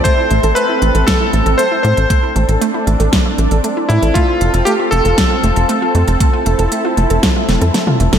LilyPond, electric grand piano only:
\new Staff \with { instrumentName = "Electric grand piano" } { \time 4/4 \key a \minor \tempo 4 = 117 c''4 b'4 a'4 c''8 c''8~ | c''8 r2. e'8 | f'4 g'8 a'2~ a'8~ | a'2. r4 | }